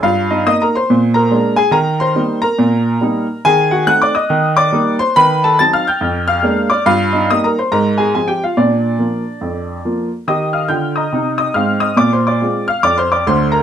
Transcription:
X:1
M:4/4
L:1/8
Q:"Swing" 1/4=141
K:Eb
V:1 name="Upright piano"
[Ff] [Ee] (3[ee'] [Bb] [cc']- [cc'] [Bb]2 [Aa] | [Bb] [cc']2 [Bb]4- [Bb] | [Aa] [_G_g] (3[g_g'] [dd'] [ee']- [ee'] [dd']2 [cc'] | [_c_c'] [=A=a] (3[a=a'] [ff'] [gg']- [gg'] [ff']2 [dd'] |
[Ff] [Ee] (3[ee'] [Bb] [cc'] [Bb] [Aa] (3[Aa] [Gg] [Ff] | [Dd]6- [Dd] z | [ee'] [ff'] [gg'] [ebe']2 [ee'] [ff'] [ee'] | (3[dd'] [cc'] [dd']- [dd'] [ff'] (3[dd'] [cc'] [dd'] [cc'] [Bb] |]
V:2 name="Upright piano" clef=bass
G,,2 [B,E]2 B,,2 [A,B,D]2 | E,2 [G,B,E]2 B,,2 [G,B,E]2 | E,2 [=A,CE]2 E,2 [G,B,E]2 | E,2 [_G,CE]2 F,,2 [A,B,D]2 |
G,,2 [G,B,E]2 A,,2 [F,CF]2 | B,,2 [F,B,F]2 F,,2 [F,B,F]2 | [E,G]2 [D,F]2 [C,E]2 [A,,C]2 | B,,2 [A,CF]2 F,,2 [D,,D,]2 |]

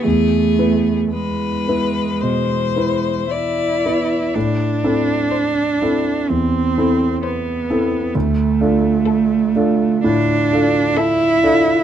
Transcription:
X:1
M:4/4
L:1/8
Q:1/4=62
K:Am
V:1 name="Violin"
^G2 B2 c2 d2 | z2 c2 z2 c2 | z2 A2 z2 A2 |]
V:2 name="Grand piano"
E,, [B,EB]2 [B,EB] B,, [B,EB]2 [B,EB] | A,, [CEA]2 [CEA] E,, [CEA]2 [CEA] | D,, [DFA]2 [DFA] A,, [DFA]2 [DFA] |]
V:3 name="Cello"
A,2 ^G,4 E2 | D4 C2 B,2 | A,4 D2 E2 |]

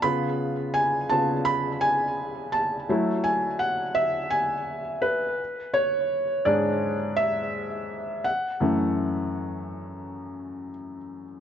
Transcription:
X:1
M:4/4
L:1/8
Q:1/4=84
K:F#m
V:1 name="Felt piano"
b2 g a b g2 a- | a g f e g2 B2 | c2 d2 e3 f- | f6 z2 |]
V:2 name="Felt piano"
[C,B,^E]3 [C,B,E] z4 | [F,A,E] z6 z | z2 [G,,G,D] z4 z | [F,,E,A,]8 |]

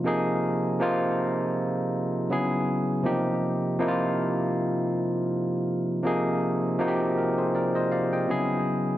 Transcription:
X:1
M:4/4
L:1/16
Q:"Swing 16ths" 1/4=80
K:Fdor
V:1 name="Tine electric piano"
z16 | z16 | z6 [GB] [Ac] [Bd] [ce] [df] [eg]2 z3 |]
V:2 name="Tine electric piano"
[C,F,B,EA]4 [C,F,B,EF]8 [_D,^F,=B,=E^G]4 | [C,F,B,EG]4 [C,F,B,E_F=F]8 z4 | [C,F,B,EA]4 [C,F,B,E_G=G]8 [_D,^F,=B,=E^G]4 |]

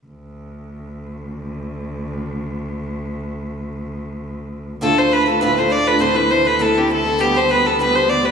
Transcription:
X:1
M:4/4
L:1/16
Q:"Swing" 1/4=202
K:Ddor
V:1 name="Fiddle"
z16 | z16 | z16 | z16 |
A2 c2 B3/2 B/2 A2 B2 c2 d2 B2 | c2 B2 c2 B2 A2 G2 A4 | G2 c2 B2 A2 B2 c2 d2 B2 |]
V:2 name="Steel-string acoustic guitar"
z16 | z16 | z16 | z16 |
[D,,A,,D,A,DF]2 [D,A,DF]2 [D,A,DF]2 [D,A,DF]2 [D,,A,,D,A,DF]2 [D,A,DF]2 [D,A,DF]2 [D,A,DF]2 | [A,,E,A,CE]2 [A,CE]2 [E,A,CE]2 [A,CE]2 [A,,E,A,CE]2 [A,CE]2 [E,A,CE]2 [A,CE]2 | [E,G,B,G]2 [B,G]2 [E,G,B,G]2 [G,B,G]2 [E,G,B,G]2 [G,B,G]2 [E,G,B,G]2 [G,B,G]2 |]
V:3 name="Cello" clef=bass
D,,16- | D,,16- | D,,16- | D,,16 |
D,,16- | D,,16- | D,,16 |]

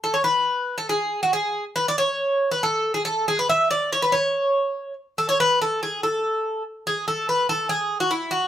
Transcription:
X:1
M:2/4
L:1/16
Q:1/4=141
K:A
V:1 name="Bouzouki"
A c B4- B A | G3 F G3 z | B d c4- c B | A3 G A2 G B |
e2 d2 c B c2- | c6 z2 | A c B2 A2 G2 | A6 z2 |
G2 A2 B2 A2 | G3 F E2 F2 |]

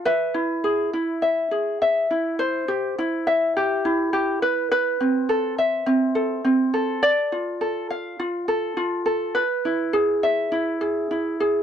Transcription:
X:1
M:4/4
L:1/8
Q:"Swing 16ths" 1/4=103
K:Ephr
V:1 name="Ukulele"
[Be] E ^G E e G e E | c G E e G E G B | B C A e C A C A | d F A f F A F A |
B E ^G e E G E G |]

